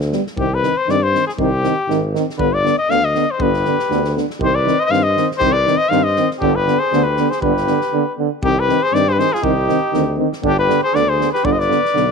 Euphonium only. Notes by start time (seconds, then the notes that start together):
0.12 G3
0.38 D#3
0.62 D#3
0.87 D#3
1.13 D#3
1.39 D#3
1.64 D#3
1.89 D#3
2.14 D#3
2.38 D3
2.64 D3
2.89 D3
3.15 D3
3.40 D3
3.66 D3
3.91 D3
4.15 D3
4.41 D#3
4.65 D#3
4.90 D#3
5.17 D#3
5.40 D#3
5.66 D#3
5.91 D#3
6.17 D#3
6.43 D3
6.67 D3
6.93 D3
7.19 D3
7.43 D3
7.69 D3
7.94 D3
8.20 D3
8.44 D#3
8.69 D#3
8.94 D#3
9.18 D#3
9.43 D#3
9.69 D#3
9.93 D#3
10.19 D#3
10.43 D3
10.69 D3
10.94 D3
11.19 D3
11.44 D3
11.68 D3
11.94 D3